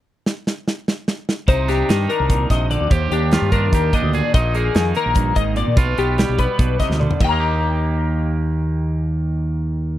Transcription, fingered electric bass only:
\new Staff \with { instrumentName = "Fingered electric bass" } { \clef bass \time 7/8 \key ees \major \tempo 4 = 147 r2. r8 | c,4 g,8 r16 c,8. bes,,8. d,16 | ees,8 ees,8. g,8. ees,8 r16 d,8 r16 | bes,,4 f,8 r16 bes,,8. aes,,8. bes,16 |
b,,8 b,,8. b,,8 r16 b,,8 r16 d,8 r16 | ees,2.~ ees,8~ | ees,2.~ ees,8 | }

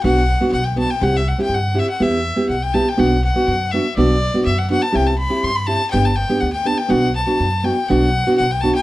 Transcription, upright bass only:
\new Staff \with { instrumentName = "Upright bass" } { \clef bass \time 2/4 \key b \phrygian \tempo 4 = 122 b,,4 b,,4 | c,4 g,4 | e,4 b,,4 | b,,4 fis,4 |
b,,4 fis,4 | c,4 g,4 | g,,4 d,4 | b,,4 fis,4 |
b,,4 b,,4 | }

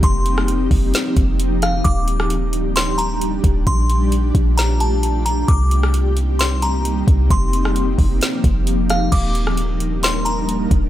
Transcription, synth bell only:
\new Staff \with { instrumentName = "Synth bell" } { \time 4/4 \key ees \lydian \tempo 4 = 132 c'''4 r2 r8 f''8 | d'''4 r4 c'''8 bes''8 r4 | c'''4 r4 bes''8 a''4 bes''8 | d'''4 r4 c'''8 bes''8 r4 |
c'''4 r2 r8 f''8 | d'''4 r4 c'''8 bes''8 r4 | }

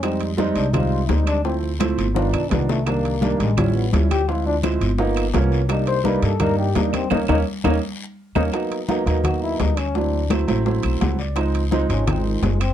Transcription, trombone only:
\new Staff \with { instrumentName = "Trombone" } { \time 4/4 \key c \minor \tempo 4 = 169 c'8 r4 d'8 f'4 ees'8 d'8 | c'8 r4. f'8 d'8 b8 a8 | bes4. aes8 g8 b8 e'8 g'8 | f'8 d'8 r2. |
ees'8 c''8 b'8 a'8 bes'8 g'8 ees'8 c'8 | ees'8 ees'8 r8 ees'8 r4. ees'8 | \key b \major r2 fis'8 e'8 dis'8 cis'8 | d'4 r2. |
r4. cis'8 bis8 dis8 gis8 bis8 | }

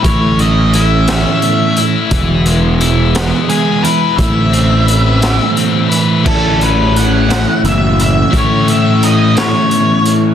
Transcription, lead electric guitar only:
\new Staff \with { instrumentName = "Lead electric guitar" } { \time 6/8 \key a \lydian \tempo 4. = 58 cis''8 dis''8 e''8 e''4 r8 | r2 gis'8 b'8 | e''2 r4 | a'8 b'8 fis''4 e''8 e''8 |
cis''8 e''8 dis''8 cis''4 r8 | }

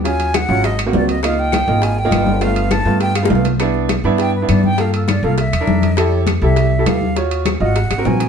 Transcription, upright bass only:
\new Staff \with { instrumentName = "Upright bass" } { \clef bass \time 4/4 \key g \mixolydian \tempo 4 = 202 ees,4. aes,,4. des,4~ | des,4. aes,,4. g,,4~ | g,,4. g,4. c,4~ | c,4. g,4. g,4~ |
g,4. c,4 e,8 f,4~ | f,4. c,4. ees,4~ | ees,4. aes,,4 aes,,8 bes,,4 | }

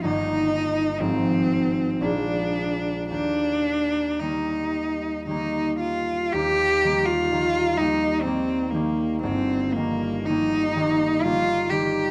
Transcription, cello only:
\new Staff \with { instrumentName = "Cello" } { \time 3/4 \key ees \major \tempo 4 = 60 ees'4 c'4 d'4 | d'4 ees'4 ees'8 f'8 | g'8. f'8. ees'8 c'8 bes8 | c'8 bes8 ees'4 f'8 g'8 | }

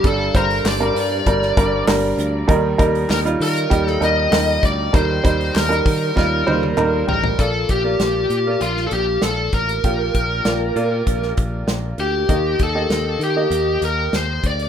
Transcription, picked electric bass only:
\new Staff \with { instrumentName = "Picked electric bass" } { \clef bass \time 4/4 \key bes \major \tempo 4 = 98 g,,8 g,,8 g,,8 g,8 g,,8 g,,8 g,,8 d,8 | ees,8 ees,8 ees,8 ees8 ees,8 ees,8 ees,8 d,8 | ees,8 ees,8 ees,8 ees8 ees,8 ees,8 ees,8 a,,8 | bes,,8 bes,,8 bes,,8 bes,8 bes,,8 bes,,8 bes,,8 a,,8 |
bes,,8 bes,,8 bes,,8 bes,8 bes,,8 bes,,8 bes,,8 d,8 | ees,8 ees,8 ees,8 ees8 ees,8 ees,8 ees,8 d,8 | }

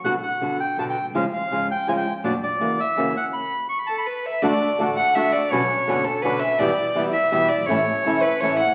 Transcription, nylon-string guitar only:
\new Staff \with { instrumentName = "Nylon-string guitar" } { \time 3/4 \key b \minor \tempo 4 = 165 <b, d b d' fis'>16 r8. <b, d b d' fis'>8 r8 <b, d b d' fis'>8 r8 | <cis eis gis cis' eis'>16 r8. <cis eis gis cis' eis'>8 r8 <cis eis gis cis' eis'>8 r8 | <b, fis b d' fis'>16 r8. <cis e ais cis' fis'>8 r8 <cis e ais cis' fis'>8 r8 | r2. |
\key d \major <d a d' fis'>16 r8. <d a d' fis'>8 r8 <d a d' fis'>8 r8 | <b, d b cis' fis'>16 r8. <b, d b cis' fis'>8 r8 <b, d b cis' fis'>8 r8 | <b, e g b e'>16 r8. <b, e g b e'>8 r8 <b, e g b e'>8 r8 | <e a cis' e'>16 r8. <e a cis' e'>8 r8 <e a cis' e'>8 r8 | }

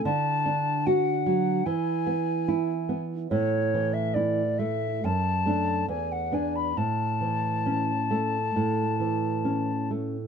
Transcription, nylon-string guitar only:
\new Staff \with { instrumentName = "Nylon-string guitar" } { \time 4/4 \key a \major \tempo 4 = 70 d8 d'8 fis'8 fis8 e8 b8 e'8 b8 | a,8 e8 e'8 a8 fis,8 <a d'>8 e,8 <b d'>8 | a,8 e8 cis'8 a8 a,8 e8 cis'8 a8 | }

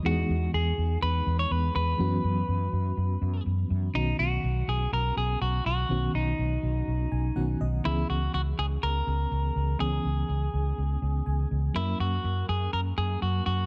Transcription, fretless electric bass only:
\new Staff \with { instrumentName = "Fretless electric bass" } { \clef bass \time 4/4 \key b \major \tempo 4 = 123 e,8 e,8 e,8 e,8 e,8 e,8 e,8 e,8 | fis,8 fis,8 fis,8 fis,8 fis,8 fis,8 fis,8 fis,8 | b,,8 b,,8 b,,8 b,,8 b,,8 b,,8 b,,8 b,,8 | b,,8 b,,8 b,,8 b,,8 b,,8 b,,8 b,,8 b,,8 |
cis,8 cis,8 cis,8 cis,8 cis,8 cis,8 cis,8 cis,8 | cis,8 cis,8 cis,8 cis,8 cis,8 cis,8 cis,8 cis,8 | fis,8 fis,8 fis,8 fis,8 fis,8 fis,8 fis,8 fis,8 | }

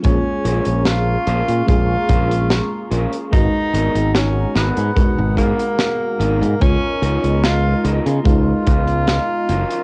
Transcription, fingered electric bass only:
\new Staff \with { instrumentName = "Fingered electric bass" } { \clef bass \time 4/4 \key ais \phrygian \tempo 4 = 73 ais,,16 r16 ais,,16 ais,,8 r16 ais,,16 ais,16 ais,,16 r16 ais,,8 r8 ais,,16 r16 | gis,,16 r16 gis,,16 gis,,8 r16 gis,,16 gis,16 r16 gis,,16 gis,16 r8. gis,,16 gis,16 | cis,16 r16 cis,16 cis,8 r16 cis,16 cis16 cis,16 r16 cis,8 r8 fis,,16 r16 | }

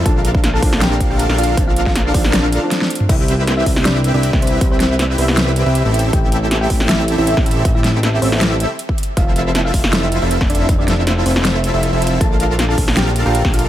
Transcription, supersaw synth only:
\new Staff \with { instrumentName = "Supersaw synth" } { \time 4/4 \key c \major \tempo 4 = 158 <d' a' bes'>4. <d' f' a' bes' f''>4~ <d' f' a' bes' f''>16 <d' f' a' bes' f''>8 <d' f' a' bes' f''>8. | <d' f' bes' f''>4. r2 r8 | <c' e' g' b' e''>4. <c' e' e''>4~ <c' e' e''>16 <c' e' g' b' e''>8 <c' e' g' b'>8. | <c' e' g' e''>4. <c' e' g' b' e''>4~ <c' e' g' b' e''>16 <c' e' g' b' e''>8 <c' e' g' a' e''>8. |
<c' e' g' a' e''>4. <c' e' a' e''>4~ <c' e' a' e''>16 <c' e' g' a' e''>8 r8. | <e' e''>4. <c' e' g' a' e''>4~ <c' e' g' a' e''>16 r4 r16 | <c' e' f' a' e''>4. r4 r16 <c' e' f' a' e''>8 <c' e' f' a' e''>8. | r4. <c' e' f' a' e''>4~ <c' e' f' a' e''>16 <c' e' f' a' e''>8 <c' e' f' a' e''>8. |
<f' a' f''>4. <a' bes'>4~ <a' bes'>16 <d' f' a' bes' f''>8 <d' f' a' bes' f''>8. | }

